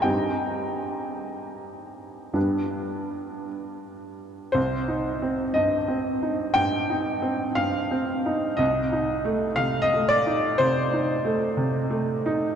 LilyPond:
<<
  \new Staff \with { instrumentName = "Upright piano" } { \time 4/4 \key c \minor \tempo 4 = 59 <g' g''>2. r4 | c''4 ees''4 g''4 f''4 | ees''4 f''16 ees''16 d''8 c''2 | }
  \new Staff \with { instrumentName = "Upright piano" } { \time 4/4 \key c \minor <g, g c' ees'>2 <g, g b d'>2 | \tuplet 3/2 { c,8 ees'8 c'8 g,8 c'8 ees'8 g,8 ees'8 c'8 g,8 c'8 ees'8 } | \tuplet 3/2 { c,8 ees'8 a8 c8 a8 ees'8 c8 ees'8 a8 c8 a8 ees'8 } | }
>>